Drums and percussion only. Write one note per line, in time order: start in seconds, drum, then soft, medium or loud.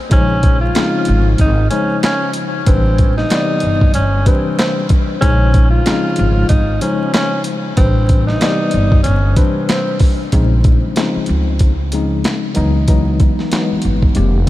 0.11 kick loud
0.11 closed hi-hat loud
0.43 kick loud
0.43 closed hi-hat medium
0.75 finger snap medium
0.75 snare loud
0.75 clap medium
0.75 closed hi-hat loud
1.05 closed hi-hat medium
1.38 kick medium
1.38 closed hi-hat medium
1.71 closed hi-hat medium
2.03 finger snap medium
2.03 snare loud
2.03 clap medium
2.03 closed hi-hat medium
2.34 closed hi-hat medium
2.66 kick loud
2.66 closed hi-hat loud
2.98 kick loud
2.98 closed hi-hat medium
3.18 snare soft
3.30 finger snap medium
3.30 snare loud
3.30 clap medium
3.30 closed hi-hat loud
3.60 closed hi-hat medium
3.81 kick medium
3.94 closed hi-hat medium
4.26 kick medium
4.26 closed hi-hat medium
4.59 finger snap medium
4.59 snare loud
4.59 clap loud
4.59 closed hi-hat medium
4.89 kick loud
4.89 closed hi-hat medium
5.22 kick loud
5.22 closed hi-hat loud
5.54 kick loud
5.54 closed hi-hat medium
5.86 finger snap medium
5.86 snare loud
5.86 clap medium
5.86 closed hi-hat loud
6.16 closed hi-hat medium
6.49 kick medium
6.49 closed hi-hat medium
6.81 closed hi-hat medium
7.14 finger snap medium
7.14 snare loud
7.14 clap loud
7.14 closed hi-hat medium
7.44 closed hi-hat medium
7.77 kick loud
7.77 closed hi-hat loud
8.09 kick loud
8.09 closed hi-hat medium
8.28 snare soft
8.41 finger snap medium
8.41 snare loud
8.41 clap medium
8.41 closed hi-hat loud
8.71 closed hi-hat medium
8.92 kick loud
9.04 closed hi-hat medium
9.36 kick loud
9.36 closed hi-hat medium
9.69 finger snap medium
9.69 snare loud
9.69 clap loud
9.69 closed hi-hat medium
9.99 kick loud
9.99 open hi-hat medium
10.32 kick loud
10.32 closed hi-hat medium
10.64 kick loud
10.64 closed hi-hat medium
10.96 snare loud
10.96 clap medium
10.96 closed hi-hat loud
11.26 closed hi-hat medium
11.59 kick medium
11.59 closed hi-hat medium
11.92 closed hi-hat medium
12.24 snare loud
12.24 clap medium
12.24 closed hi-hat medium
12.55 closed hi-hat medium
12.88 kick loud
12.88 closed hi-hat medium
13.20 kick loud
13.20 closed hi-hat medium
13.39 snare soft
13.52 snare loud
13.52 clap medium
13.52 closed hi-hat loud
13.82 closed hi-hat medium
14.02 kick medium
14.15 closed hi-hat medium